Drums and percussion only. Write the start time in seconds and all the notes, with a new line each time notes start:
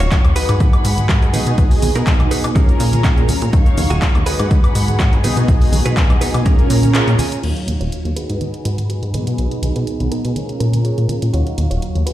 0.00 closed hi-hat, tambourine, shaker
0.12 kick, clap, closed hi-hat, tambourine, shaker
0.25 closed hi-hat, tambourine, high conga, high woodblock, shaker
0.36 open hi-hat, tambourine, shaker
0.49 closed hi-hat, tambourine, high woodblock, shaker
0.60 kick, closed hi-hat, tambourine, high conga, shaker
0.73 closed hi-hat, tambourine, high woodblock, shaker
0.85 open hi-hat, tambourine, shaker
0.98 closed hi-hat, tambourine, high conga, shaker
1.09 kick, clap, closed hi-hat, tambourine, shaker
1.22 closed hi-hat, tambourine, shaker
1.34 open hi-hat, tambourine, high conga, low conga, shaker
1.47 closed hi-hat, tambourine, shaker
1.58 kick, closed hi-hat, shaker
1.71 open hi-hat, shaker
1.82 open hi-hat, tambourine, high conga, low conga, shaker
1.95 closed hi-hat, tambourine, shaker
2.07 kick, clap, closed hi-hat, shaker
2.20 closed hi-hat, tambourine, high conga, high woodblock, shaker
2.31 open hi-hat, tambourine, shaker
2.44 closed hi-hat, tambourine, high woodblock, shaker
2.55 kick, closed hi-hat, tambourine, high conga, shaker
2.69 closed hi-hat, tambourine, shaker
2.80 open hi-hat, tambourine, shaker
2.93 closed hi-hat, tambourine, high conga, shaker
3.04 kick, clap, closed hi-hat, shaker
3.18 closed hi-hat, tambourine, shaker
3.28 open hi-hat, tambourine, high conga, low conga, shaker
3.42 closed hi-hat, tambourine, shaker
3.53 kick, closed hi-hat, tambourine, shaker
3.66 closed hi-hat, tambourine, shaker
3.77 open hi-hat, tambourine, high conga, low conga, shaker
3.90 closed hi-hat, tambourine, shaker
4.02 kick, clap, closed hi-hat, shaker
4.15 closed hi-hat, tambourine, high conga, high woodblock, shaker
4.26 open hi-hat, tambourine, shaker
4.39 closed hi-hat, tambourine, high woodblock, shaker
4.51 kick, closed hi-hat, tambourine, high conga, shaker
4.64 closed hi-hat, tambourine, high woodblock, shaker
4.75 open hi-hat, tambourine, shaker
4.88 closed hi-hat, tambourine, high conga, shaker
5.00 kick, clap, closed hi-hat, tambourine, shaker
5.12 closed hi-hat, tambourine, shaker
5.24 open hi-hat, tambourine, high conga, low conga, shaker
5.36 closed hi-hat, tambourine, shaker
5.48 kick, closed hi-hat, tambourine, shaker
5.61 open hi-hat, tambourine, shaker
5.72 open hi-hat, tambourine, high conga, low conga, shaker
5.86 closed hi-hat, shaker
5.97 kick, clap, closed hi-hat, shaker
6.10 closed hi-hat, tambourine, high conga, low conga, high woodblock, shaker
6.21 open hi-hat, tambourine, shaker
6.34 closed hi-hat, tambourine, high woodblock, shaker
6.45 kick, closed hi-hat, tambourine, high conga, shaker
6.59 closed hi-hat, tambourine, shaker
6.70 open hi-hat, tambourine, shaker
6.83 closed hi-hat, tambourine, high conga, shaker
6.95 clap, closed hi-hat, tambourine, shaker
7.07 closed hi-hat, tambourine, shaker
7.18 open hi-hat, tambourine, high conga, low conga, shaker
7.31 closed hi-hat, tambourine, shaker
7.43 closed hi-hat, crash
7.56 closed hi-hat
7.67 closed hi-hat, tambourine, high conga, low conga
7.81 closed hi-hat
7.92 closed hi-hat
8.05 closed hi-hat, tambourine, high conga
8.16 closed hi-hat, tambourine
8.30 closed hi-hat
8.41 closed hi-hat, tambourine, high conga
8.54 closed hi-hat
8.65 closed hi-hat
8.78 closed hi-hat, tambourine, high conga
8.90 closed hi-hat
9.03 closed hi-hat
9.14 closed hi-hat, tambourine, high conga, low conga
9.27 closed hi-hat
9.38 closed hi-hat
9.51 closed hi-hat
9.62 closed hi-hat, tambourine, high conga, low conga
9.76 closed hi-hat
9.87 closed hi-hat
10.00 closed hi-hat, tambourine, high conga
10.12 closed hi-hat
10.25 closed hi-hat
10.36 closed hi-hat, tambourine, high conga
10.49 closed hi-hat, tambourine
10.60 closed hi-hat
10.73 closed hi-hat, tambourine, high conga
10.85 closed hi-hat
10.98 closed hi-hat
11.08 closed hi-hat, tambourine, high conga, low conga
11.22 closed hi-hat, tambourine
11.34 closed hi-hat
11.47 closed hi-hat
11.58 closed hi-hat, tambourine, high conga, low conga
11.71 closed hi-hat
11.82 closed hi-hat, tambourine
11.95 closed hi-hat, tambourine, high conga
12.07 closed hi-hat